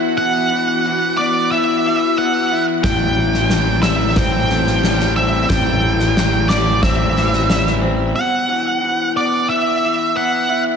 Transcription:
0.00 0.51 E3 soft
0.00 2.80 E3 medium
0.00 1.17 B3 medium
0.00 2.80 B3 medium
0.00 1.51 E4 soft
0.00 2.80 F#4 medium
0.18 1.85 B2 medium
0.18 1.20 F#5 medium
0.52 0.85 E3 medium
0.86 1.85 E3 medium
1.17 2.17 B3 soft
1.17 1.51 D5 medium
1.52 2.51 E4 medium
1.52 2.20 E5 medium
1.86 3.17 E3 medium
2.18 2.84 B3 medium
2.18 2.64 F#5 medium
2.52 4.17 E4 medium
2.83 5.46 A1 medium
2.83 4.50 A2 medium
2.83 8.12 G3 medium
2.83 8.11 C4 medium
2.83 8.12 A4 medium
2.83 3.79 G5 medium
2.83 kick medium
2.83 snare medium
3.17 3.50 E3 medium
3.34 snare soft
3.50 4.50 E3 medium
3.50 snare medium
3.83 4.83 G3 medium
3.83 4.14 E5 medium
3.83 snare medium
4.16 5.16 C4 medium
4.16 5.13 G5 medium
4.16 kick medium
4.16 snare medium
4.50 5.82 E3 medium
4.50 snare soft
4.67 snare soft
4.83 6.48 G3 medium
4.83 snare medium
5.00 snare soft
5.16 6.81 C4 medium
5.16 5.47 E5 medium
5.49 8.12 A1 medium
5.49 7.16 A2 medium
5.49 6.52 G5 medium
5.49 kick medium
5.49 snare medium
5.83 6.15 E3 medium
5.99 snare soft
6.16 7.15 E3 medium
6.16 snare medium
6.49 7.47 G3 medium
6.49 6.80 D5 medium
6.49 snare medium
6.82 7.80 C4 medium
6.82 7.79 E5 medium
6.82 kick medium
6.82 snare medium
7.16 8.16 E3 medium
7.16 snare soft
7.33 snare soft
7.48 8.15 G3 medium
7.48 snare medium
7.67 snare soft
7.81 8.15 C4 medium
8.16 9.82 B2 soft
8.16 9.12 F#5 medium
8.49 8.81 E3 soft
8.81 9.82 E3 soft
9.15 10.14 B3 soft
9.15 9.49 D5 medium
9.49 10.48 E4 medium
9.49 10.18 E5 medium
9.83 10.77 E3 soft
10.15 10.77 B3 medium
10.15 10.63 F#5 medium
10.49 10.77 E4 medium

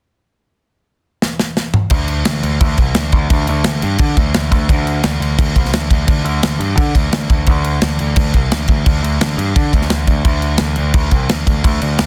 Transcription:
1.22 snare medium
1.40 snare medium
1.57 snare medium
1.74 mid tom loud
1.90 2.22 D2 loud
1.90 kick loud
1.90 crash medium
2.08 crash medium
2.25 2.42 D2 medium
2.25 snare loud
2.25 crash medium
2.43 2.59 D2 medium
2.43 crash medium
2.60 2.76 D2 medium
2.60 kick loud
2.60 crash medium
2.78 2.94 C2 loud
2.78 kick medium
2.78 crash medium
2.95 3.11 D2 medium
2.95 snare loud
2.95 crash medium
3.12 3.28 D2 medium
3.12 kick medium
3.12 crash medium
3.30 3.46 D2 loud
3.30 kick loud
3.30 crash medium
3.47 3.64 D2 medium
3.47 crash medium
3.64 3.81 D2 medium
3.64 snare loud
3.64 crash medium
3.82 3.99 G2 medium
3.82 crash medium
3.98 4.15 D3 medium
3.98 kick loud
3.98 crash medium
4.17 4.33 D2 loud
4.17 kick loud
4.17 crash medium
4.34 4.51 D2 medium
4.34 snare loud
4.34 crash medium
4.51 4.67 D2 loud
4.51 kick medium
4.51 crash medium
4.69 5.01 D2 loud
4.69 kick loud
4.69 crash medium
4.87 crash medium
5.03 5.20 D2 medium
5.03 snare loud
5.03 crash medium
5.20 5.36 D2 medium
5.20 crash medium
5.39 5.54 D2 loud
5.39 kick loud
5.39 crash medium
5.56 5.72 C2 medium
5.56 kick medium
5.56 crash medium
5.65 snare soft
5.73 5.89 D2 medium
5.73 snare loud
5.73 crash medium
5.90 6.06 D2 medium
5.90 kick medium
5.90 crash medium
6.07 6.23 D2 loud
6.07 kick loud
6.07 crash medium
6.24 6.41 D2 loud
6.24 crash medium
6.43 6.59 D2 medium
6.43 snare loud
6.43 crash medium
6.59 6.75 G2 medium
6.59 crash medium
6.77 6.93 D3 loud
6.77 kick loud
6.77 crash medium
6.95 7.11 D2 medium
6.95 kick medium
6.95 crash medium
7.12 7.28 D2 medium
7.12 snare loud
7.12 crash medium
7.30 7.46 D2 medium
7.30 kick medium
7.30 crash medium
7.46 7.79 D2 medium
7.46 kick loud
7.46 crash medium
7.64 crash medium
7.82 7.98 D2 medium
7.82 snare loud
7.82 crash medium
7.99 8.16 D2 medium
7.99 crash medium
8.16 8.32 D2 medium
8.16 kick loud
8.16 crash medium
8.34 8.50 C2 medium
8.34 kick medium
8.34 crash medium
8.51 8.67 D2 medium
8.51 snare loud
8.51 crash medium
8.68 8.84 D2 medium
8.68 kick loud
8.68 crash medium
8.86 9.02 D2 medium
8.86 kick loud
8.86 crash loud
9.03 9.19 D2 medium
9.03 crash medium
9.21 9.37 D2 medium
9.21 snare loud
9.21 crash medium
9.37 9.54 G2 medium
9.37 crash medium
9.56 9.72 D3 medium
9.56 kick loud
9.56 crash medium
9.73 9.88 D2 medium
9.73 kick medium
9.73 crash medium
9.82 snare soft
9.89 10.05 D2 medium
9.89 snare loud
9.89 crash medium
10.07 10.23 D2 medium
10.07 kick medium
10.07 crash medium
10.24 10.56 D2 medium
10.24 kick loud
10.24 crash medium
10.42 crash medium
10.58 10.76 D2 medium
10.58 snare loud
10.58 crash medium
10.76 10.93 D2 medium
10.76 crash medium
10.94 11.10 D2 loud
10.94 kick loud
10.94 crash medium
11.11 11.28 C2 loud
11.11 kick medium
11.11 crash medium
11.29 11.45 D2 medium
11.29 snare loud
11.29 crash medium
11.46 11.62 D2 medium
11.46 kick medium
11.46 crash medium
11.64 11.80 D2 loud
11.64 kick loud
11.64 crash medium
11.82 11.98 D2 medium
11.82 crash medium
11.99 12.06 D2 medium
11.99 snare loud
11.99 crash medium

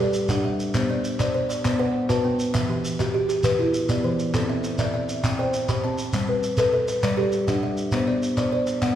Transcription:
0.00 0.15 G3 medium
0.00 0.30 G4 medium
0.00 0.45 A4 medium
0.00 0.15 B4 medium
0.00 0.30 D5 medium
0.00 0.45 D5 medium
0.13 shekere medium
0.29 0.60 D4 medium
0.29 0.75 G4 medium
0.29 0.75 F#5 medium
0.29 clap soft
0.29 shekere medium
0.44 0.74 G3 medium
0.44 0.90 E5 medium
0.60 shekere soft
0.74 1.05 B3 medium
0.74 1.05 C5 medium
0.74 clap medium
0.74 shekere medium
0.90 1.20 B3 medium
0.90 1.19 D5 medium
1.04 shekere medium
1.19 1.64 C5 medium
1.19 1.50 D5 medium
1.19 clap soft
1.19 shekere medium
1.34 1.78 C5 medium
1.34 1.48 D5 medium
1.49 1.94 D5 medium
1.49 clap soft
1.49 shekere medium
1.65 1.95 B3 medium
1.65 clap medium
1.65 shekere medium
1.79 2.09 B4 medium
1.79 2.25 C5 medium
1.79 2.25 F#5 medium
2.09 2.39 F#4 medium
2.09 2.54 B4 medium
2.09 2.54 A5 medium
2.09 clap soft
2.09 shekere medium
2.24 2.54 B3 medium
2.24 2.69 G5 medium
2.39 shekere medium
2.54 2.84 E3 medium
2.54 2.84 E5 medium
2.54 clap medium
2.54 shekere medium
2.69 2.99 E3 medium
2.69 2.98 G4 medium
2.85 shekere medium
2.99 3.44 F#4 medium
2.99 3.29 G4 medium
2.99 clap soft
2.99 shekere medium
3.14 3.58 F#4 medium
3.14 3.28 G4 medium
3.29 3.74 G4 medium
3.29 clap soft
3.29 shekere medium
3.43 3.74 E3 medium
3.43 3.89 B4 medium
3.43 clap medium
3.43 shekere medium
3.59 3.89 E4 medium
3.59 4.04 F#4 medium
3.74 shekere medium
3.89 4.19 B3 medium
3.89 4.34 E4 medium
3.89 4.34 D5 medium
3.89 clap soft
3.89 shekere medium
4.04 4.34 E3 medium
4.04 4.49 C5 medium
4.19 shekere medium
4.34 4.64 C4 medium
4.34 4.64 A4 medium
4.34 clap medium
4.34 shekere medium
4.49 4.79 C4 medium
4.49 4.78 E5 medium
4.64 clap soft
4.64 shekere medium
4.78 5.24 D5 medium
4.78 5.09 E5 medium
4.78 clap soft
4.78 shekere medium
4.94 5.39 D5 medium
4.94 5.08 E5 medium
5.09 5.54 E5 medium
5.09 shekere medium
5.24 5.54 C4 medium
5.24 5.69 G5 medium
5.24 clap medium
5.24 shekere medium
5.39 5.69 C5 medium
5.39 5.84 D5 medium
5.39 5.84 G5 medium
5.53 clap soft
5.53 shekere medium
5.69 5.99 G4 medium
5.69 6.14 C5 medium
5.69 6.14 B5 medium
5.69 clap soft
5.69 shekere medium
5.84 6.14 C4 medium
5.84 6.29 A5 medium
5.84 clap soft
5.98 shekere medium
6.13 6.44 G3 medium
6.13 clap medium
6.13 shekere medium
6.28 6.58 G3 medium
6.28 6.58 B4 medium
6.43 shekere medium
6.57 7.03 A4 medium
6.57 6.88 B4 medium
6.57 clap soft
6.57 shekere medium
6.73 7.17 A4 medium
6.73 6.86 B4 medium
6.88 7.33 B4 medium
6.88 clap soft
6.88 shekere medium
7.03 7.33 G3 medium
7.03 7.48 D5 medium
7.03 clap medium
7.03 shekere medium
7.17 7.48 G4 medium
7.17 7.63 A4 medium
7.17 7.62 D5 medium
7.32 shekere soft
7.48 7.78 D4 medium
7.48 7.93 G4 medium
7.48 7.93 F#5 medium
7.48 clap soft
7.48 shekere medium
7.63 7.93 G3 medium
7.63 8.08 E5 medium
7.77 shekere soft
7.92 8.23 B3 medium
7.92 8.23 C5 medium
7.92 clap medium
7.92 shekere medium
8.08 8.38 B3 medium
8.08 8.37 D5 medium
8.22 shekere soft
8.37 8.83 C5 medium
8.37 8.68 D5 medium
8.37 clap soft
8.37 shekere medium
8.52 8.95 C5 medium
8.52 8.82 D5 medium
8.67 clap soft
8.67 shekere soft
8.82 8.95 B3 medium
8.82 8.95 F#5 medium
8.82 clap medium
8.82 shekere medium

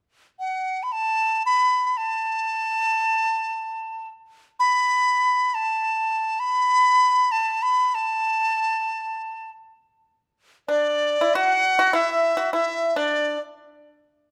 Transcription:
0.39 0.85 F#5 medium
0.83 0.94 B5 medium
0.92 1.45 A5 medium
1.46 1.87 B5 medium
1.87 1.99 B5 soft
1.97 4.09 A5 medium
4.60 5.56 B5 medium
5.54 6.41 A5 medium
6.40 7.33 B5 medium
7.32 7.64 A5 medium
7.62 7.96 B5 medium
7.95 9.51 A5 medium
10.68 11.17 D4 medium
10.68 11.36 D5 medium
11.21 11.35 E4 soft
11.35 11.76 F#4 medium
11.35 11.97 F#5 medium
11.79 11.93 F#4 medium
11.93 12.34 E4 medium
11.93 12.53 E5 medium
12.37 12.51 F#4 medium
12.53 12.93 E4 medium
12.53 12.99 E5 medium
12.96 13.36 D4 medium
12.96 13.40 D5 medium

